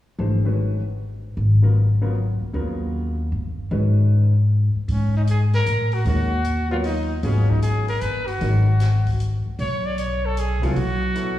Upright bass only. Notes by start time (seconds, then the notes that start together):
0.19 G#1
1.37 G#1
2.41 muted upright bass stroke
2.54 D#2
3.32 G1
3.71 G#2
4.75 muted upright bass stroke
4.88 G#2
5.66 A2
6.05 D#2
7.23 G#1
8.02 G1
8.41 G#1
9.45 muted upright bass stroke
9.59 B1
10.63 C2
10.76 B1